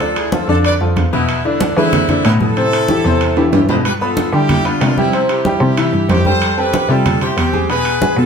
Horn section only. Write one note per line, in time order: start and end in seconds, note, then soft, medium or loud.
0.00 0.15 F4 medium
0.00 0.15 A4 medium
0.17 0.33 E4 medium
0.17 0.33 G#4 medium
0.33 0.49 F4 medium
0.33 0.49 A4 medium
0.50 0.57 F4 medium
0.50 0.57 A4 medium
0.66 0.73 B4 medium
0.66 0.73 D5 loud
1.14 1.44 B3 medium
1.14 1.43 E4 medium
1.45 1.78 B3 medium
1.45 1.77 D4 medium
1.78 2.23 C4 medium
1.78 2.22 E4 loud
2.26 2.33 B3 medium
2.26 2.33 E4 medium
2.41 3.50 E4 medium
2.41 3.49 A4 loud
3.54 3.62 E4 medium
3.54 3.61 G4 medium
3.70 3.77 A4 medium
3.70 3.77 C5 medium
3.86 3.93 G4 medium
3.86 3.93 B4 medium
4.02 4.32 F4 medium
4.02 4.31 A4 medium
4.34 4.66 E4 medium
4.34 4.66 G4 medium
4.66 4.98 D4 medium
4.66 4.98 F4 loud
4.98 5.30 C4 medium
4.98 5.29 E4 medium
5.30 6.09 E4 medium
5.30 6.09 G4 medium
6.10 6.25 E4 medium
6.10 6.25 G4 medium
6.27 6.56 A4 medium
6.27 6.56 C5 loud
6.58 6.90 G4 medium
6.58 6.90 B4 medium
6.91 7.22 F4 medium
6.91 7.22 A4 loud
7.22 7.37 E4 medium
7.22 7.37 G4 loud
7.39 7.68 C4 medium
7.39 7.68 G4 loud
7.71 8.15 G#4 medium
7.71 8.15 B4 loud
8.19 8.26 F4 medium
8.19 8.26 A4 loud